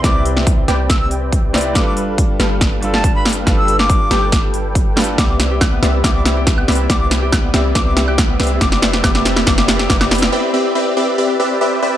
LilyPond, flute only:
\new Staff \with { instrumentName = "Flute" } { \time 4/4 \key c \major \tempo 4 = 140 d'''8 r4. e'''16 e'''16 r4. | d'''16 d'''16 r2 r16 a''8 b''16 r8 | r16 e'''8 d'''4. r4. r16 | d'''16 d'''16 r4. d'''16 d'''16 r4. |
d'''16 d'''16 r4. d'''16 d'''16 r4. | d'''16 d'''16 r8 d'''16 d'''16 r8 d'''16 d'''16 r8 d'''16 d'''16 r8 | r1 | }